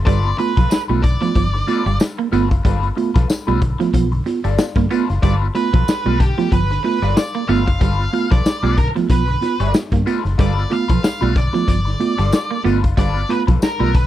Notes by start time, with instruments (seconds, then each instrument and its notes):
0.06 fingered electric bass G1, tine electric piano G2 D3, clean electric guitar G3 F4 A4 B4, lead electric guitar D5, kick, closed hi-hat
0.25 tine electric piano B3 F4
0.38 tine electric piano A3 B3 F4, lead electric guitar B4, muted clean electric guitar stroke, closed hi-hat
0.57 fingered electric bass B1, clean electric guitar F3 F4 A4 B4, kick, closed hi-hat
0.70 lead electric guitar B4, muted clean electric guitar stroke, snare, tambourine
0.88 fingered electric bass B1, clean electric guitar G3 F4 A4 B4, tine electric piano A3 B3 F4, closed hi-hat
1.03 tine electric piano G2 D3, lead electric guitar D5, muted clean electric guitar stroke, kick, closed hi-hat
1.21 clean electric guitar F3, tine electric piano A3 B3 F4, muted clean electric guitar stroke, snare, closed hi-hat
1.35 fingered electric bass G1, clean electric guitar F3, kick, closed hi-hat
1.53 tine electric piano G2 D3, muted clean electric guitar stroke, snare
1.67 tine electric piano A3 B3 F4, clean electric guitar F4 A4 B4, muted clean electric guitar stroke, closed hi-hat
1.86 fingered electric bass G1, clean electric guitar G3, muted clean electric guitar stroke, closed hi-hat
2.00 muted clean electric guitar stroke, snare, tambourine
2.18 clean electric guitar A#3, muted clean electric guitar stroke, closed hi-hat
2.32 fingered electric bass G1, tine electric piano A3 B3 F4, clean electric guitar B3 F4 A4 B4, snare, closed hi-hat
2.51 fingered electric bass F#1, muted clean electric guitar stroke, kick, closed hi-hat
2.65 fingered electric bass G1, tine electric piano G2 D3, clean electric guitar G3 F4 A4 B4, kick, closed hi-hat
2.83 tine electric piano B3 F4, closed hi-hat
2.96 tine electric piano A3 B3 F4, muted clean electric guitar stroke, closed hi-hat
3.14 fingered electric bass B1, clean electric guitar F3 F4 A4 B4, kick, snare, closed hi-hat
3.29 muted clean electric guitar stroke, snare, tambourine
3.47 fingered electric bass B1, clean electric guitar G3 F4 A4 B4, tine electric piano A3 B3 F4, closed hi-hat
3.61 tine electric piano G2 D3, muted clean electric guitar stroke, kick, closed hi-hat
3.79 clean electric guitar F3, tine electric piano A3 B3 F4, muted clean electric guitar stroke, snare, closed hi-hat
3.93 fingered electric bass B1, clean electric guitar F3, tine electric piano B3 F4, muted clean electric guitar stroke, kick, closed hi-hat
4.12 tine electric piano G2 D3, muted clean electric guitar stroke, closed hi-hat
4.26 tine electric piano B3 F4, muted clean electric guitar stroke, snare, closed hi-hat
4.44 fingered electric bass G1, clean electric guitar G3 F4 A4 D5, closed hi-hat
4.58 tine electric piano B3 F4, muted clean electric guitar stroke, snare, tambourine
4.76 fingered electric bass G2, tine electric piano G2 D3, clean electric guitar A#3, muted clean electric guitar stroke, kick, snare, closed hi-hat
4.90 tine electric piano A3 B3 F4, clean electric guitar B3 F4 A4 B4, closed hi-hat
5.09 fingered electric bass F#1, muted clean electric guitar stroke, snare, closed hi-hat
5.23 fingered electric bass G1, tine electric piano G2 D3, clean electric guitar G3 F4 A4 B4, lead electric guitar D5, kick, closed hi-hat
5.41 tine electric piano B3 F4
5.55 tine electric piano A3 B3 F4, lead electric guitar B4, muted clean electric guitar stroke, closed hi-hat
5.73 fingered electric bass B1, clean electric guitar F3 F4 A4 B4, kick, closed hi-hat
5.88 muted fingered electric bass stroke, muted clean electric guitar stroke, snare, tambourine
6.05 fingered electric bass B1, clean electric guitar G3 F4 A4 B4, tine electric piano A3 B3 F4
6.20 tine electric piano G2 D3, lead electric guitar G4, muted clean electric guitar stroke, kick, closed hi-hat
6.38 clean electric guitar F3, tine electric piano A3 B3 F4, muted clean electric guitar stroke, snare, closed hi-hat
6.52 fingered electric bass G1, clean electric guitar F3, lead electric guitar B4, muted clean electric guitar stroke, kick, closed hi-hat
6.70 tine electric piano G2 D3, muted clean electric guitar stroke, snare, closed hi-hat
6.84 tine electric piano A3 B3 F4, lead electric guitar B4, muted clean electric guitar stroke, open hi-hat
7.02 fingered electric bass G1, clean electric guitar G3 F4 A4 D5, closed hi-hat
7.17 lead electric guitar D5, muted clean electric guitar stroke, snare, tambourine
7.34 clean electric guitar A#3, muted clean electric guitar stroke, closed hi-hat
7.48 fingered electric bass G1, tine electric piano A3 B3 F4, clean electric guitar B3 F4 A4 B4, lead electric guitar F5, snare, closed hi-hat
7.66 fingered electric bass F#1, lead electric guitar F5, muted clean electric guitar stroke, kick, closed hi-hat
7.80 fingered electric bass G1, tine electric piano G2 D3, clean electric guitar G3 F4 A4 B4, kick, closed hi-hat
7.99 tine electric piano B3 F4, closed hi-hat
8.13 tine electric piano A3 B3 F4, muted clean electric guitar stroke, closed hi-hat
8.31 fingered electric bass B1, clean electric guitar F3 F4 A4 B4, lead electric guitar D5, kick, snare, closed hi-hat
8.45 muted clean electric guitar stroke, snare, tambourine
8.63 fingered electric bass B1, clean electric guitar G3 F4 A4 B4, tine electric piano A3 B3 F4, closed hi-hat
8.77 tine electric piano G2 D3, lead electric guitar A#4, muted clean electric guitar stroke, kick, closed hi-hat
8.95 clean electric guitar F3, tine electric piano A3 B3 F4, muted clean electric guitar stroke, snare, closed hi-hat
9.09 fingered electric bass B1, clean electric guitar F3, tine electric piano B3 F4, lead electric guitar B4, muted clean electric guitar stroke, kick, closed hi-hat
9.28 tine electric piano G2 D3, muted clean electric guitar stroke, closed hi-hat
9.41 tine electric piano B3 F4, muted clean electric guitar stroke, snare, closed hi-hat
9.60 fingered electric bass G1, clean electric guitar G3 F4 A4 D5, closed hi-hat
9.74 tine electric piano B3 F4, muted clean electric guitar stroke, snare, tambourine
9.92 fingered electric bass G2, tine electric piano G2 D3, clean electric guitar A#3, kick, snare, closed hi-hat
10.06 tine electric piano A3 B3 F4, clean electric guitar B3 F4 A4 B4, closed hi-hat
10.24 fingered electric bass F#1, muted clean electric guitar stroke, snare, closed hi-hat
10.38 fingered electric bass G1, tine electric piano G2 D3, clean electric guitar G3 F4 A4 B4, lead electric guitar D5, kick, closed hi-hat
10.57 tine electric piano B3 F4
10.70 tine electric piano A3 B3 F4, lead electric guitar F5, muted clean electric guitar stroke, closed hi-hat
10.88 fingered electric bass B1, clean electric guitar F3 F4 A4 B4, kick, closed hi-hat
11.03 lead electric guitar F5, muted clean electric guitar stroke, muted fingered electric bass stroke, snare, tambourine
11.21 fingered electric bass B1, clean electric guitar G3 F4 A4 B4, tine electric piano A3 B3 F4
11.35 tine electric piano G2 D3, lead electric guitar D5, muted clean electric guitar stroke, kick, closed hi-hat
11.53 clean electric guitar F3, tine electric piano A3 B3 F4, muted clean electric guitar stroke, snare, closed hi-hat
11.67 fingered electric bass G1, clean electric guitar F3, lead electric guitar D5, muted clean electric guitar stroke, kick, closed hi-hat
11.85 tine electric piano G2 D3, muted clean electric guitar stroke, snare, closed hi-hat
12.00 tine electric piano A3 B3 F4, muted clean electric guitar stroke, closed hi-hat
12.18 fingered electric bass G1, clean electric guitar G3 F4 A4 D5, closed hi-hat
12.32 muted clean electric guitar stroke, snare, tambourine
12.50 clean electric guitar A#3, muted clean electric guitar stroke
12.64 fingered electric bass G1, tine electric piano A3 B3 F4, clean electric guitar B3 F4 A4 B4, closed hi-hat
12.83 fingered electric bass F#1, muted clean electric guitar stroke, kick, closed hi-hat
12.97 fingered electric bass G1, tine electric piano G2 D3, clean electric guitar G3 F4 A4 B4, lead electric guitar D5, kick, closed hi-hat
13.15 tine electric piano B3 F4, closed hi-hat
13.29 tine electric piano A3 B3 F4, lead electric guitar B4, muted clean electric guitar stroke, closed hi-hat
13.47 fingered electric bass B1, clean electric guitar F3 F4 A4 B4, kick, closed hi-hat
13.62 lead electric guitar A#4, muted clean electric guitar stroke, snare, tambourine
13.79 fingered electric bass B1, clean electric guitar G3 F4 A4 B4, tine electric piano A3 B3 F4
13.94 tine electric piano G2 D3, lead electric guitar B4, muted clean electric guitar stroke, kick, closed hi-hat